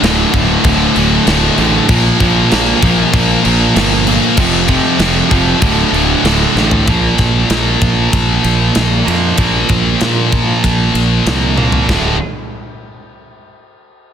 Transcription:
Already playing: overdriven electric guitar D2 A2 D3
0.03 fingered electric bass D1, distorted electric guitar D2 A2 D3, snare, crash
0.33 fingered electric bass D1, distorted electric guitar D2 A2 D3, kick, crash
0.64 fingered electric bass D1, distorted electric guitar D2 A2 D3, kick, crash
0.96 fingered electric bass D1, distorted electric guitar D2 A2 D3, crash
1.26 fingered electric bass D1, distorted electric guitar D2 A2 D3, snare, crash
1.58 fingered electric bass A1, distorted electric guitar D2 A2 D3, crash
1.89 fingered electric bass A#1, distorted electric guitar A#2 F3 A#3, kick, crash
2.20 fingered electric bass A#1, distorted electric guitar A#2 F3 A#3, kick, crash
2.50 fingered electric bass A#1, distorted electric guitar A#2 F3 A#3, snare, crash
2.83 fingered electric bass A#1, distorted electric guitar A#2 F3 A#3, kick, crash
3.13 fingered electric bass A#1, distorted electric guitar A#2 F3 A#3, kick, crash
3.44 fingered electric bass A#1, distorted electric guitar A#2 F3 A#3, crash
3.75 fingered electric bass G1, distorted electric guitar A#2 F3 A#3, snare, crash
4.07 distorted electric guitar A#2 F3 A#3, crash
4.37 fingered electric bass F1, distorted electric guitar F2 C3 F3, kick, crash
4.68 distorted electric guitar F2 C3 F3, kick, crash
4.99 fingered electric bass F1, distorted electric guitar F2 C3 F3, snare, crash
5.29 fingered electric bass F1, distorted electric guitar F2 C3 F3, kick, crash
5.60 fingered electric bass D1, distorted electric guitar D2 A2 D3, kick, crash
5.92 fingered electric bass D1, distorted electric guitar D2 A2 D3, crash
6.23 fingered electric bass D1, distorted electric guitar D2 A2 D3, snare, crash
6.55 fingered electric bass A1, distorted electric guitar D2 A2 D3, snare
6.71 floor tom
6.86 fingered electric bass A#1, distorted electric guitar A#2 F3 A#3, kick, ride
7.18 fingered electric bass A#1, kick, snare, ride
7.50 fingered electric bass A#1, snare, ride
7.82 fingered electric bass A#1, kick, ride
8.13 fingered electric bass A#1, kick, ride
8.44 fingered electric bass A#1, ride
8.75 fingered electric bass A#1, snare, ride
9.05 fingered electric bass F2, distorted electric guitar A#2 F3 A#3, ride
9.37 fingered electric bass A#1, distorted electric guitar A#2 F3 A#3, kick, ride
9.69 fingered electric bass A#1, kick, ride
10.01 fingered electric bass A#2, snare, ride
10.32 kick, ride
10.64 fingered electric bass A#1, kick, ride
10.94 fingered electric bass A#1, ride
11.26 fingered electric bass C2, snare, ride
11.58 distorted electric guitar A#2 F3 A#3, high tom
11.72 floor tom
11.89 fingered electric bass D1, distorted electric guitar D2 A2 D3, kick, snare, crash

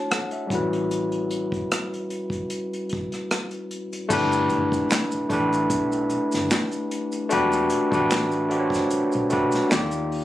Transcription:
Already playing: fingered electric bass D2, tine electric piano A3 D4 E4 F#4 C#5 A5
0.11 tine electric piano A4 F#5, cross-stick, closed hi-hat
0.31 tine electric piano E5, closed hi-hat
0.47 tine electric piano G3 C#4, kick
0.51 fingered electric bass A1, tine electric piano E4 F#4 B4, closed hi-hat
0.73 closed hi-hat
0.91 closed hi-hat
1.12 closed hi-hat
1.31 closed hi-hat
1.52 kick, closed hi-hat
1.72 cross-stick, closed hi-hat
1.94 closed hi-hat
2.10 closed hi-hat
2.30 kick, closed hi-hat
2.50 closed hi-hat
2.73 closed hi-hat
2.89 kick, closed hi-hat
3.12 cross-stick, closed hi-hat
3.31 cross-stick, closed hi-hat
3.51 closed hi-hat
3.71 closed hi-hat
3.93 closed hi-hat
4.09 fingered electric bass G1, tine electric piano A3 D4 E4 G4, kick, crash, maracas
4.13 tine electric piano B4
4.32 closed hi-hat, maracas
4.50 kick, closed hi-hat, maracas
4.72 kick, closed hi-hat, maracas
4.91 finger snap, snare, clap, closed hi-hat, maracas
5.11 muted fingered electric bass stroke, closed hi-hat, maracas
5.29 fingered electric bass A1, tine electric piano A3 D4 E4 G4, kick, closed hi-hat
5.33 tine electric piano B4
5.53 closed hi-hat, maracas
5.70 fingered electric bass B1, kick, closed hi-hat, maracas
5.92 closed hi-hat, maracas
6.10 closed hi-hat, maracas
6.32 fingered electric bass G1, snare, closed hi-hat, maracas
6.51 finger snap, snare, clap, closed hi-hat, maracas
6.71 closed hi-hat, maracas
6.91 closed hi-hat
7.12 closed hi-hat, maracas
7.29 fingered electric bass E1, tine electric piano A3 D4 F#4 G4 B4, closed hi-hat, maracas
7.52 closed hi-hat, maracas
7.70 closed hi-hat, maracas
7.91 fingered electric bass A1, tine electric piano A3 D4 F#4 G4 B4, kick, closed hi-hat, maracas
8.11 finger snap, snare, clap, closed hi-hat, maracas
8.32 closed hi-hat, maracas
8.49 tine electric piano A3 D4 F#4 G4, closed hi-hat
8.53 tine electric piano C5
8.59 tine electric piano C#5
8.70 kick, closed hi-hat
8.74 snare, maracas
8.90 muted fingered electric bass stroke, closed hi-hat, maracas
9.12 fingered electric bass B1, closed hi-hat, maracas
9.29 tine electric piano A3 D4 F#4 G4 B4, kick, closed hi-hat, maracas
9.52 snare, closed hi-hat, maracas
9.69 tine electric piano A#3 D#4 F4 G4, finger snap, snare, closed hi-hat, maracas
9.73 fingered electric bass D#2, tine electric piano D5, clap
9.91 closed hi-hat, maracas
10.12 open hi-hat

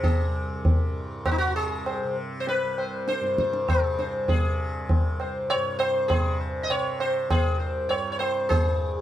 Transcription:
Already playing: tanpura C2 G2 C3
0.03 sitar G#4, tabla tin, tabla ge
0.27 tanpura C2
0.65 tabla tin, tabla ge
0.87 tanpura G2
1.26 sitar F#4, tabla na, tabla ge
1.31 sitar D#4
1.38 sitar F#4
1.47 tanpura C3
1.56 sitar G#4
1.86 sitar C5, tabla na
2.04 tanpura C3
2.40 sitar C5
2.47 sitar B4, tabla tin
2.63 tanpura C2
2.78 sitar C5, tabla na
3.08 sitar C5, tabla te
3.20 tanpura G2, tabla te
3.38 sitar C5, tabla ke
3.53 tabla te
3.69 sitar G#4, tabla na, tabla ge
3.80 tanpura C3
3.99 sitar C5, tabla te
4.28 sitar G#4, tabla tin, tabla ge
4.38 tanpura C3
4.89 tabla tin, tabla ge
4.95 tanpura C2
5.20 sitar C5, tabla na
5.50 sitar C#5, tabla na
5.54 tanpura G2
5.79 sitar C5, tabla na
6.08 tanpura C3, sitar G#4, tabla na, tabla ge
6.40 sitar C5
6.63 sitar D#5
6.70 tanpura C3, sitar C#5, tabla na
7.00 sitar C5, tabla na
7.28 tanpura C2, sitar G#4, tabla na, tabla ge
7.59 sitar C5
7.87 tanpura G2, sitar C#5, tabla na
8.12 sitar C#5
8.19 sitar C5, tabla na
8.49 tanpura G2, sitar G#4 C5, tabla tin, tabla ge
8.98 sitar G4

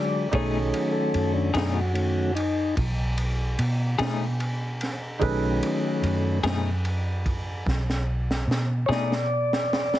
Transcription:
Already playing: tonewheel organ D3 F#3 G#3 D5, fingered electric bass E3, upright piano D4 F#4
0.31 fingered electric bass B1, clean electric guitar B2 A3 D#4 G#4, tonewheel organ D#3 F#3 A3 C#4, upright piano D#4 G#4 A4 C#5, kick, ride
0.74 ride
0.92 tonewheel organ A4
1.14 fingered electric bass F#2, ride
1.34 tonewheel organ D4
1.54 fingered electric bass F#2, clean electric guitar B2 A3 D#4 G#4, snare, ride
1.74 tonewheel organ F#4
1.93 tonewheel organ D#3 F#3 A3 C#4, ride
2.35 tonewheel organ D#4, ride
2.77 fingered electric bass B1, kick, ride
3.18 ride
3.59 fingered electric bass B2, ride
3.99 fingered electric bass B2, clean electric guitar B2 A3 D#4 G#4, snare, ride
4.40 ride
4.81 snare, ride
5.19 fingered electric bass B1, tonewheel organ D#3 F#3 A3 C#4, upright piano D#4 G#4 A4 B4, kick, ride
5.63 ride
6.03 fingered electric bass F#2, ride
6.43 fingered electric bass F#2, clean electric guitar B2 A3 D#4 G#4, snare, ride
6.85 ride
7.26 kick, ride
7.66 fingered electric bass B1, kick, snare
7.90 snare
8.31 snare
8.47 fingered electric bass B2, snare
8.86 fingered electric bass B2, clean electric guitar A3 D#4 G#4, tonewheel organ C#5
8.90 clean electric guitar B2, tonewheel organ D5, snare
9.12 snare
9.53 snare
9.73 snare
9.94 snare

